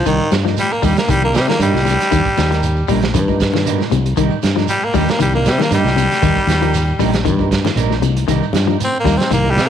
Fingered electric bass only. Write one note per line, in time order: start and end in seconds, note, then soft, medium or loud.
0.06 0.18 C2 medium
0.32 0.54 G2 medium
0.83 0.95 D#2 medium
1.09 1.36 C2 medium
1.34 1.46 C3 medium
1.59 1.71 G2 loud
1.74 1.96 C2 medium
2.12 2.24 D#2 loud
2.38 2.82 D#2 medium
2.89 3.16 A#1 medium
3.15 3.80 G2 loud
3.92 4.14 C2 loud
4.17 4.29 C2 medium
4.43 4.65 G2 medium
4.94 5.06 D#2 medium
5.20 5.47 C2 medium
5.46 5.57 C3 medium
5.71 5.83 G2 medium
5.84 6.06 C2 medium
6.23 6.34 D#2 loud
6.47 6.91 D#2 medium
7.00 7.27 A#1 medium
7.25 7.69 G2 medium
7.76 7.99 A#1 medium
8.01 8.25 C2 medium
8.28 8.40 C2 medium
8.53 8.75 G2 medium
9.05 9.17 D#2 medium
9.31 9.57 C2 loud
9.56 9.67 C3 medium